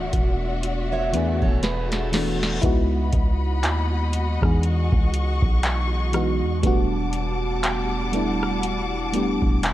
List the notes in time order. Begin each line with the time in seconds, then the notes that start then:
Already playing: D1 E3 A3 B3 D4 F#4 D5 E5 F#5
0.13 E1, kick, closed hi-hat
0.63 closed hi-hat, reverse cymbal
0.92 C#5 E5
1.12 E2 E3 A3 B3 D4 B4 D5, closed hi-hat
1.16 G#4
1.42 E1 A4 C#5, kick
1.63 G#4 B4, snare, closed hi-hat
1.92 F#4 A4, snare, closed hi-hat
2.12 E3 A3 B3 D4, snare, open hi-hat
2.16 F#4
2.43 snare
2.62 C#2 G#3 B3 D#4 E4 F#4 D#5 F#5 B5, kick, closed hi-hat
2.66 F#4
3.13 C#2, kick, closed hi-hat
3.63 D#2, clap, closed hi-hat
4.13 closed hi-hat
4.41 E2 E3 G#3 B3 D#4, kick, cross-stick
4.45 G#4
4.63 C#6, closed hi-hat
4.92 C#2, kick
5.14 closed hi-hat
5.42 B1, kick
5.63 clap, closed hi-hat
6.12 E3 G#3 B3 D#4, cross-stick, closed hi-hat
6.16 F#4
6.42 E2
6.62 E1 G3 A3 B3 D4 F#5 A5 D6, kick, closed hi-hat
6.67 F#4
7.13 closed hi-hat
7.63 clap, closed hi-hat
8.12 G3 A3 B3 D4, closed hi-hat
8.16 E4
8.43 cross-stick
8.63 closed hi-hat
9.12 G3 A3 B3 D4, closed hi-hat
9.17 G4
9.42 E1, kick
9.63 clap, closed hi-hat